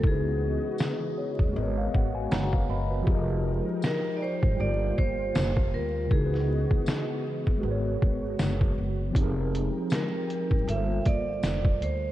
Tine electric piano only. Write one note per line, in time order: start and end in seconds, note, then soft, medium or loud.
0.00 1.49 C#3 medium
0.00 1.48 G#3 medium
0.00 1.52 D#4 medium
0.06 1.53 E4 medium
0.06 1.52 F#4 medium
0.11 1.56 B4 medium
1.18 1.53 C#5 medium
1.49 3.01 G#3 medium
1.49 2.29 F#4 medium
1.56 2.30 A#4 medium
1.56 2.32 B4 medium
1.56 1.76 D#5 medium
1.63 2.31 C#5 medium
1.78 1.93 F5 medium
1.94 2.14 F#5 medium
2.15 2.30 G#5 medium
2.31 2.52 C#5 soft
2.31 2.52 F#5 medium
2.31 2.67 A#5 medium
2.53 2.69 B4 medium
2.53 2.68 F5 medium
2.70 2.90 A#4 medium
2.70 2.90 D#5 medium
2.70 3.05 B5 medium
2.90 3.27 F#4 medium
2.90 3.27 B4 medium
3.02 4.53 F3 medium
3.02 4.55 F4 medium
3.06 4.56 G4 medium
3.06 4.57 G#4 medium
3.12 4.58 A#4 medium
3.12 4.60 D#5 medium
4.53 6.05 G3 medium
4.53 6.07 F4 medium
4.60 6.08 G4 medium
4.60 6.10 A#4 medium
4.67 6.12 C5 medium
6.06 7.57 C#3 medium
6.06 7.56 G#3 medium
6.11 7.60 D#4 medium
6.11 7.62 E4 medium
6.17 7.60 F#4 medium
6.17 6.23 A#4 medium
6.26 7.67 B4 medium
7.58 9.09 G#3 medium
7.58 9.11 F#4 medium
7.65 9.13 A#4 medium
7.65 9.14 B4 medium
7.71 9.16 C#5 medium
9.10 10.62 F3 medium
9.10 10.63 C4 medium
9.15 10.64 D#4 medium
9.15 10.66 G4 medium
9.21 10.67 G#4 medium
9.21 10.68 A#4 medium
10.62 12.12 G3 medium
10.62 12.12 F4 medium
10.69 12.12 A4 medium
10.69 12.12 A#4 medium
10.75 12.12 C5 medium